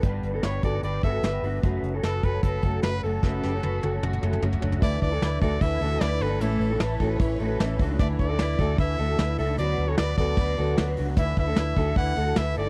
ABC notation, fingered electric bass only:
X:1
M:4/4
L:1/8
Q:1/4=151
K:D
V:1 name="Fingered electric bass" clef=bass
G,,, G,,, G,,, G,,, G,,, G,,, G,,, G,,, | F,,, F,,, F,,, F,,, F,,, F,,, F,,, F,,, | F,,, F,,, F,,, F,,, F,,, F,,, F,,, F,,, | D,, D,, D,, D,, D,, D,, D,, G,,, |
A,,, A,,, A,,, A,,, A,,, A,,, A,,, C,, | D,, D,, D,, D,, D,, D,, D,, C,, | D,, D,, D,, D,, D,, D,, D,, C,, | D,, D,, D,, D,, D,, D,, D,, G,,, |]